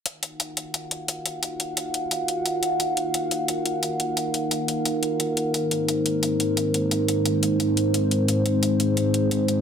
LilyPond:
<<
  \new Staff \with { instrumentName = "Analog synth pad" } { \time 4/4 \key ees \dorian \tempo 4 = 175 << { <ees' f'' ges''>1~ | <ees' f'' ges''>1~ | <ees' f'' ges''>1~ | <ees' f'' ges''>1 |
<aes c''>1~ | <aes c''>1~ | <aes c''>1 | } \\ { bes'1~ | bes'1~ | bes'1~ | bes'1~ |
bes'1~ | bes'1 | aes'1 | } >> }
  \new DrumStaff \with { instrumentName = "Drums" } \drummode { \time 4/4 hh8 hh8 hh8 hh8 hh8 hh8 hh8 hh8 | hh8 hh8 hh8 hh8 hh8 hh8 hh8 hh8 | hh8 hh8 hh8 hh8 hh8 hh8 hh8 hh8 | hh8 hh8 hh8 hh8 hh8 hh8 hh8 hh8 |
hh8 hh8 hh8 hh8 hh8 hh8 hh8 hh8 | hh8 hh8 hh8 hh8 hh8 hh8 hh8 hh8 | hh8 hh8 hh8 hh8 hh8 hh8 hh8 hh8 | }
>>